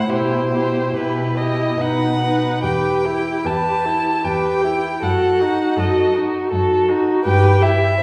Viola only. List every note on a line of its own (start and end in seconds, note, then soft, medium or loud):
0.11 0.53 E4 soft
0.53 0.95 E4 soft
0.98 1.37 E4 soft
1.38 1.79 E4 soft
1.80 2.21 D#4 soft
2.22 2.63 D#4 soft
2.64 3.07 G4 soft
3.05 3.47 E4 soft
3.45 3.87 G4 soft
3.85 4.24 E4 soft
4.25 4.65 G4 soft
4.64 5.02 E4 soft
5.03 5.42 F#4 soft
5.41 5.80 D#4 soft
5.78 6.17 F#4 soft
6.16 6.50 D#4 soft
6.51 6.90 F#4 soft
6.89 7.25 D#4 soft
7.25 7.65 G4 soft
7.64 8.01 E4 soft